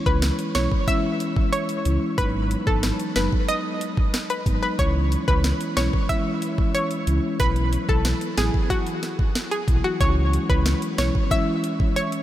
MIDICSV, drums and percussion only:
0, 0, Header, 1, 2, 480
1, 0, Start_track
1, 0, Key_signature, 4, "minor"
1, 0, Tempo, 652174
1, 1604, Time_signature, 4, 2, 24, 8
1, 8999, End_track
2, 0, Start_track
2, 0, Title_t, "Drums"
2, 45, Note_on_c, 9, 36, 94
2, 118, Note_off_c, 9, 36, 0
2, 163, Note_on_c, 9, 38, 114
2, 164, Note_on_c, 9, 42, 83
2, 237, Note_off_c, 9, 38, 0
2, 237, Note_off_c, 9, 42, 0
2, 285, Note_on_c, 9, 42, 59
2, 358, Note_off_c, 9, 42, 0
2, 404, Note_on_c, 9, 38, 105
2, 404, Note_on_c, 9, 42, 71
2, 477, Note_off_c, 9, 42, 0
2, 478, Note_off_c, 9, 38, 0
2, 527, Note_on_c, 9, 36, 88
2, 600, Note_off_c, 9, 36, 0
2, 644, Note_on_c, 9, 36, 82
2, 645, Note_on_c, 9, 42, 75
2, 718, Note_off_c, 9, 36, 0
2, 718, Note_off_c, 9, 42, 0
2, 885, Note_on_c, 9, 42, 77
2, 958, Note_off_c, 9, 42, 0
2, 1004, Note_on_c, 9, 36, 101
2, 1078, Note_off_c, 9, 36, 0
2, 1125, Note_on_c, 9, 42, 81
2, 1199, Note_off_c, 9, 42, 0
2, 1243, Note_on_c, 9, 42, 59
2, 1317, Note_off_c, 9, 42, 0
2, 1365, Note_on_c, 9, 42, 77
2, 1438, Note_off_c, 9, 42, 0
2, 1604, Note_on_c, 9, 42, 81
2, 1605, Note_on_c, 9, 36, 115
2, 1677, Note_off_c, 9, 42, 0
2, 1678, Note_off_c, 9, 36, 0
2, 1847, Note_on_c, 9, 42, 74
2, 1920, Note_off_c, 9, 42, 0
2, 1965, Note_on_c, 9, 36, 92
2, 2039, Note_off_c, 9, 36, 0
2, 2083, Note_on_c, 9, 38, 112
2, 2083, Note_on_c, 9, 42, 84
2, 2157, Note_off_c, 9, 38, 0
2, 2157, Note_off_c, 9, 42, 0
2, 2205, Note_on_c, 9, 42, 60
2, 2278, Note_off_c, 9, 42, 0
2, 2324, Note_on_c, 9, 38, 108
2, 2324, Note_on_c, 9, 42, 69
2, 2397, Note_off_c, 9, 42, 0
2, 2398, Note_off_c, 9, 38, 0
2, 2447, Note_on_c, 9, 36, 88
2, 2520, Note_off_c, 9, 36, 0
2, 2565, Note_on_c, 9, 42, 71
2, 2638, Note_off_c, 9, 42, 0
2, 2805, Note_on_c, 9, 42, 78
2, 2879, Note_off_c, 9, 42, 0
2, 2925, Note_on_c, 9, 36, 98
2, 2998, Note_off_c, 9, 36, 0
2, 3045, Note_on_c, 9, 38, 107
2, 3045, Note_on_c, 9, 42, 81
2, 3119, Note_off_c, 9, 38, 0
2, 3119, Note_off_c, 9, 42, 0
2, 3164, Note_on_c, 9, 42, 58
2, 3237, Note_off_c, 9, 42, 0
2, 3283, Note_on_c, 9, 36, 95
2, 3285, Note_on_c, 9, 42, 79
2, 3357, Note_off_c, 9, 36, 0
2, 3359, Note_off_c, 9, 42, 0
2, 3525, Note_on_c, 9, 36, 119
2, 3525, Note_on_c, 9, 42, 82
2, 3598, Note_off_c, 9, 42, 0
2, 3599, Note_off_c, 9, 36, 0
2, 3768, Note_on_c, 9, 42, 76
2, 3841, Note_off_c, 9, 42, 0
2, 3886, Note_on_c, 9, 36, 94
2, 3959, Note_off_c, 9, 36, 0
2, 4005, Note_on_c, 9, 38, 113
2, 4005, Note_on_c, 9, 42, 88
2, 4079, Note_off_c, 9, 38, 0
2, 4079, Note_off_c, 9, 42, 0
2, 4126, Note_on_c, 9, 42, 61
2, 4199, Note_off_c, 9, 42, 0
2, 4245, Note_on_c, 9, 42, 71
2, 4246, Note_on_c, 9, 38, 111
2, 4319, Note_off_c, 9, 38, 0
2, 4319, Note_off_c, 9, 42, 0
2, 4367, Note_on_c, 9, 36, 93
2, 4441, Note_off_c, 9, 36, 0
2, 4485, Note_on_c, 9, 36, 87
2, 4486, Note_on_c, 9, 42, 73
2, 4558, Note_off_c, 9, 36, 0
2, 4560, Note_off_c, 9, 42, 0
2, 4725, Note_on_c, 9, 42, 78
2, 4799, Note_off_c, 9, 42, 0
2, 4845, Note_on_c, 9, 36, 101
2, 4918, Note_off_c, 9, 36, 0
2, 4965, Note_on_c, 9, 42, 81
2, 5038, Note_off_c, 9, 42, 0
2, 5083, Note_on_c, 9, 42, 57
2, 5157, Note_off_c, 9, 42, 0
2, 5205, Note_on_c, 9, 42, 83
2, 5279, Note_off_c, 9, 42, 0
2, 5444, Note_on_c, 9, 42, 82
2, 5445, Note_on_c, 9, 36, 112
2, 5517, Note_off_c, 9, 42, 0
2, 5518, Note_off_c, 9, 36, 0
2, 5564, Note_on_c, 9, 42, 53
2, 5638, Note_off_c, 9, 42, 0
2, 5686, Note_on_c, 9, 42, 76
2, 5760, Note_off_c, 9, 42, 0
2, 5805, Note_on_c, 9, 36, 89
2, 5878, Note_off_c, 9, 36, 0
2, 5924, Note_on_c, 9, 37, 67
2, 5924, Note_on_c, 9, 38, 115
2, 5924, Note_on_c, 9, 42, 85
2, 5997, Note_off_c, 9, 37, 0
2, 5997, Note_off_c, 9, 38, 0
2, 5998, Note_off_c, 9, 42, 0
2, 6044, Note_on_c, 9, 42, 58
2, 6118, Note_off_c, 9, 42, 0
2, 6164, Note_on_c, 9, 38, 112
2, 6164, Note_on_c, 9, 42, 70
2, 6237, Note_off_c, 9, 42, 0
2, 6238, Note_off_c, 9, 38, 0
2, 6287, Note_on_c, 9, 36, 88
2, 6360, Note_off_c, 9, 36, 0
2, 6404, Note_on_c, 9, 36, 83
2, 6405, Note_on_c, 9, 42, 74
2, 6478, Note_off_c, 9, 36, 0
2, 6479, Note_off_c, 9, 42, 0
2, 6525, Note_on_c, 9, 42, 57
2, 6598, Note_off_c, 9, 42, 0
2, 6645, Note_on_c, 9, 38, 69
2, 6645, Note_on_c, 9, 42, 76
2, 6718, Note_off_c, 9, 38, 0
2, 6718, Note_off_c, 9, 42, 0
2, 6764, Note_on_c, 9, 36, 97
2, 6838, Note_off_c, 9, 36, 0
2, 6885, Note_on_c, 9, 38, 108
2, 6885, Note_on_c, 9, 42, 86
2, 6958, Note_off_c, 9, 38, 0
2, 6958, Note_off_c, 9, 42, 0
2, 7003, Note_on_c, 9, 42, 56
2, 7076, Note_off_c, 9, 42, 0
2, 7123, Note_on_c, 9, 36, 98
2, 7125, Note_on_c, 9, 42, 79
2, 7196, Note_off_c, 9, 36, 0
2, 7198, Note_off_c, 9, 42, 0
2, 7364, Note_on_c, 9, 36, 117
2, 7364, Note_on_c, 9, 42, 80
2, 7438, Note_off_c, 9, 36, 0
2, 7438, Note_off_c, 9, 42, 0
2, 7606, Note_on_c, 9, 42, 78
2, 7680, Note_off_c, 9, 42, 0
2, 7725, Note_on_c, 9, 36, 92
2, 7798, Note_off_c, 9, 36, 0
2, 7844, Note_on_c, 9, 38, 116
2, 7844, Note_on_c, 9, 42, 82
2, 7917, Note_off_c, 9, 38, 0
2, 7918, Note_off_c, 9, 42, 0
2, 7965, Note_on_c, 9, 42, 60
2, 8038, Note_off_c, 9, 42, 0
2, 8083, Note_on_c, 9, 42, 72
2, 8084, Note_on_c, 9, 38, 103
2, 8157, Note_off_c, 9, 42, 0
2, 8158, Note_off_c, 9, 38, 0
2, 8207, Note_on_c, 9, 36, 90
2, 8280, Note_off_c, 9, 36, 0
2, 8324, Note_on_c, 9, 36, 87
2, 8325, Note_on_c, 9, 42, 77
2, 8397, Note_off_c, 9, 36, 0
2, 8398, Note_off_c, 9, 42, 0
2, 8565, Note_on_c, 9, 42, 76
2, 8639, Note_off_c, 9, 42, 0
2, 8684, Note_on_c, 9, 36, 98
2, 8758, Note_off_c, 9, 36, 0
2, 8805, Note_on_c, 9, 42, 82
2, 8879, Note_off_c, 9, 42, 0
2, 8922, Note_on_c, 9, 42, 60
2, 8996, Note_off_c, 9, 42, 0
2, 8999, End_track
0, 0, End_of_file